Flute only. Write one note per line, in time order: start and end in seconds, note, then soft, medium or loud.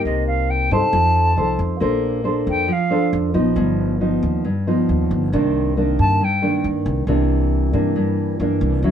0.05 0.26 D#5 medium
0.27 0.51 F5 medium
0.50 0.73 G5 medium
0.72 1.60 A5 loud
2.50 2.74 G5 medium
2.72 3.15 F5 medium
6.00 6.25 A5 loud
6.24 6.66 G5 medium